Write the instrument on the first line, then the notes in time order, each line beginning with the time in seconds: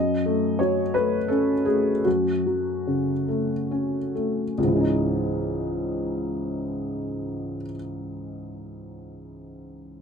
felt piano
Already playing: F#2 D#5
0.26 A3
0.59 F#3 C#5
0.94 A3 B4
1.28 C#4 A4
1.65 A3 G#4
2.05 F#2 F#4
2.46 F#3
2.87 C#3
3.28 A3
3.71 C#4
4.15 A3
4.58 C#2
4.63 G#2
4.67 E3
4.72 G#3
4.76 C#4
4.81 D#4